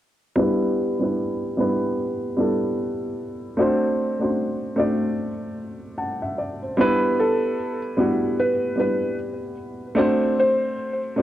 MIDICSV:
0, 0, Header, 1, 3, 480
1, 0, Start_track
1, 0, Key_signature, 1, "minor"
1, 0, Tempo, 800000
1, 221, Time_signature, 4, 2, 24, 8
1, 6732, End_track
2, 0, Start_track
2, 0, Title_t, "Felt piano"
2, 0, Program_c, 0, 0
2, 4317, Note_on_c, 0, 69, 75
2, 4667, Note_off_c, 0, 69, 0
2, 5037, Note_on_c, 0, 71, 76
2, 5246, Note_off_c, 0, 71, 0
2, 5279, Note_on_c, 0, 71, 74
2, 5487, Note_off_c, 0, 71, 0
2, 6237, Note_on_c, 0, 72, 72
2, 6587, Note_off_c, 0, 72, 0
2, 6732, End_track
3, 0, Start_track
3, 0, Title_t, "Upright piano"
3, 0, Program_c, 1, 0
3, 214, Note_on_c, 1, 55, 108
3, 219, Note_on_c, 1, 59, 92
3, 225, Note_on_c, 1, 62, 90
3, 231, Note_on_c, 1, 64, 98
3, 236, Note_on_c, 1, 71, 103
3, 321, Control_c, 1, 64, 127
3, 444, Note_off_c, 1, 55, 0
3, 447, Note_off_c, 1, 59, 0
3, 450, Note_off_c, 1, 62, 0
3, 453, Note_off_c, 1, 64, 0
3, 455, Note_off_c, 1, 71, 0
3, 595, Note_on_c, 1, 55, 74
3, 602, Note_on_c, 1, 59, 55
3, 607, Note_on_c, 1, 62, 59
3, 612, Note_on_c, 1, 64, 65
3, 618, Note_on_c, 1, 71, 67
3, 819, Note_off_c, 1, 55, 0
3, 823, Note_off_c, 1, 59, 0
3, 825, Note_off_c, 1, 62, 0
3, 828, Note_off_c, 1, 64, 0
3, 830, Note_off_c, 1, 71, 0
3, 942, Note_on_c, 1, 55, 79
3, 947, Note_on_c, 1, 59, 71
3, 951, Note_on_c, 1, 62, 66
3, 957, Note_on_c, 1, 64, 65
3, 962, Note_on_c, 1, 71, 89
3, 1249, Note_off_c, 1, 55, 0
3, 1252, Note_off_c, 1, 59, 0
3, 1254, Note_off_c, 1, 62, 0
3, 1257, Note_off_c, 1, 64, 0
3, 1260, Note_off_c, 1, 71, 0
3, 1420, Note_on_c, 1, 55, 76
3, 1425, Note_on_c, 1, 59, 64
3, 1430, Note_on_c, 1, 62, 58
3, 1435, Note_on_c, 1, 64, 62
3, 1440, Note_on_c, 1, 69, 77
3, 1873, Note_off_c, 1, 55, 0
3, 1876, Note_off_c, 1, 59, 0
3, 1878, Note_off_c, 1, 62, 0
3, 1881, Note_off_c, 1, 64, 0
3, 1883, Note_off_c, 1, 69, 0
3, 2141, Note_on_c, 1, 57, 97
3, 2147, Note_on_c, 1, 60, 97
3, 2150, Control_c, 1, 64, 0
3, 2153, Note_on_c, 1, 62, 98
3, 2157, Note_on_c, 1, 66, 95
3, 2162, Note_on_c, 1, 72, 110
3, 2268, Control_c, 1, 64, 127
3, 2368, Note_off_c, 1, 57, 0
3, 2370, Note_off_c, 1, 60, 0
3, 2374, Note_off_c, 1, 62, 0
3, 2376, Note_off_c, 1, 66, 0
3, 2378, Note_off_c, 1, 72, 0
3, 2516, Note_on_c, 1, 57, 67
3, 2520, Note_on_c, 1, 60, 61
3, 2525, Note_on_c, 1, 62, 67
3, 2531, Note_on_c, 1, 66, 65
3, 2536, Note_on_c, 1, 72, 76
3, 2740, Note_off_c, 1, 57, 0
3, 2742, Note_off_c, 1, 60, 0
3, 2744, Note_off_c, 1, 62, 0
3, 2747, Note_off_c, 1, 66, 0
3, 2749, Note_off_c, 1, 72, 0
3, 2856, Note_on_c, 1, 57, 88
3, 2861, Note_on_c, 1, 60, 66
3, 2867, Note_on_c, 1, 62, 84
3, 2872, Note_on_c, 1, 66, 72
3, 2878, Note_on_c, 1, 74, 90
3, 3167, Note_off_c, 1, 57, 0
3, 3169, Note_off_c, 1, 60, 0
3, 3172, Note_off_c, 1, 62, 0
3, 3175, Note_off_c, 1, 66, 0
3, 3177, Note_off_c, 1, 74, 0
3, 3586, Note_on_c, 1, 78, 60
3, 3586, Note_on_c, 1, 81, 61
3, 3714, Note_off_c, 1, 81, 0
3, 3717, Note_off_c, 1, 78, 0
3, 3733, Note_on_c, 1, 76, 55
3, 3733, Note_on_c, 1, 78, 53
3, 3822, Note_off_c, 1, 76, 0
3, 3829, Note_on_c, 1, 74, 63
3, 3958, Note_off_c, 1, 74, 0
3, 3975, Note_on_c, 1, 72, 51
3, 4044, Note_off_c, 1, 78, 0
3, 4062, Note_on_c, 1, 55, 102
3, 4069, Control_c, 1, 64, 0
3, 4069, Note_on_c, 1, 59, 88
3, 4074, Note_on_c, 1, 62, 93
3, 4078, Note_on_c, 1, 64, 100
3, 4084, Note_on_c, 1, 71, 127
3, 4162, Control_c, 1, 64, 127
3, 4196, Note_off_c, 1, 72, 0
3, 4514, Note_off_c, 1, 55, 0
3, 4518, Note_off_c, 1, 59, 0
3, 4520, Note_off_c, 1, 62, 0
3, 4522, Note_off_c, 1, 64, 0
3, 4525, Note_off_c, 1, 71, 0
3, 4781, Note_on_c, 1, 55, 81
3, 4785, Note_on_c, 1, 59, 78
3, 4790, Note_on_c, 1, 62, 75
3, 4796, Note_on_c, 1, 64, 80
3, 4801, Note_on_c, 1, 66, 91
3, 5089, Note_off_c, 1, 55, 0
3, 5091, Note_off_c, 1, 59, 0
3, 5094, Note_off_c, 1, 62, 0
3, 5097, Note_off_c, 1, 64, 0
3, 5099, Note_off_c, 1, 66, 0
3, 5254, Note_on_c, 1, 55, 64
3, 5259, Note_on_c, 1, 59, 55
3, 5265, Note_on_c, 1, 62, 58
3, 5270, Note_on_c, 1, 64, 54
3, 5275, Note_on_c, 1, 71, 65
3, 5710, Note_off_c, 1, 55, 0
3, 5713, Note_off_c, 1, 59, 0
3, 5716, Note_off_c, 1, 62, 0
3, 5718, Note_off_c, 1, 64, 0
3, 5721, Note_off_c, 1, 71, 0
3, 5970, Note_on_c, 1, 57, 106
3, 5976, Note_on_c, 1, 60, 99
3, 5980, Note_on_c, 1, 62, 103
3, 5986, Note_on_c, 1, 66, 97
3, 5989, Control_c, 1, 64, 0
3, 5991, Note_on_c, 1, 72, 112
3, 6094, Control_c, 1, 64, 127
3, 6428, Note_off_c, 1, 57, 0
3, 6431, Note_off_c, 1, 60, 0
3, 6434, Note_off_c, 1, 62, 0
3, 6436, Note_off_c, 1, 66, 0
3, 6439, Note_off_c, 1, 72, 0
3, 6697, Note_on_c, 1, 57, 88
3, 6701, Note_on_c, 1, 60, 80
3, 6707, Note_on_c, 1, 62, 84
3, 6712, Note_on_c, 1, 66, 81
3, 6732, Note_off_c, 1, 57, 0
3, 6732, Note_off_c, 1, 60, 0
3, 6732, Note_off_c, 1, 62, 0
3, 6732, Note_off_c, 1, 66, 0
3, 6732, End_track
0, 0, End_of_file